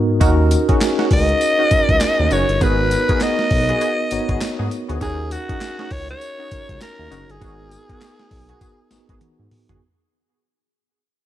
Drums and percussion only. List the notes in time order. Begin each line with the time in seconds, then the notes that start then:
0.21 kick, closed hi-hat, tambourine
0.51 closed hi-hat, tambourine
0.69 kick, closed hi-hat
0.81 snare, clap, closed hi-hat, tambourine
0.99 snare
1.11 kick, open hi-hat
1.29 closed hi-hat
1.41 closed hi-hat, tambourine
1.71 kick, closed hi-hat, tambourine
1.89 kick, closed hi-hat
2.01 snare, clap, closed hi-hat, tambourine
2.31 closed hi-hat, tambourine
2.49 closed hi-hat
2.61 kick, closed hi-hat, tambourine
2.91 closed hi-hat, tambourine
3.09 kick, closed hi-hat
3.20 snare, clap, closed hi-hat, tambourine
3.39 snare
3.51 kick, open hi-hat
3.69 closed hi-hat
3.81 closed hi-hat, tambourine
4.11 closed hi-hat, tambourine
4.29 kick, closed hi-hat
4.41 snare, clap, closed hi-hat, tambourine
4.71 closed hi-hat, tambourine
4.89 closed hi-hat
5.01 kick, closed hi-hat, tambourine
5.31 closed hi-hat, tambourine
5.49 kick, closed hi-hat
5.61 snare, clap, closed hi-hat, tambourine
5.79 snare
5.91 kick, open hi-hat
6.09 closed hi-hat
6.21 closed hi-hat, tambourine
6.51 kick, closed hi-hat, tambourine
6.69 kick, closed hi-hat
6.81 snare, clap, closed hi-hat, tambourine
7.12 closed hi-hat, tambourine
7.29 closed hi-hat
7.42 kick, closed hi-hat, tambourine
7.71 closed hi-hat, tambourine
7.89 kick, closed hi-hat
8.01 snare, clap, closed hi-hat, tambourine
8.19 snare
8.31 kick, open hi-hat
8.49 closed hi-hat
8.61 kick, closed hi-hat, tambourine
8.91 snare, closed hi-hat, tambourine
9.09 kick, closed hi-hat
9.21 closed hi-hat, high tom
9.51 mid tom, open hi-hat
9.69 closed hi-hat, floor tom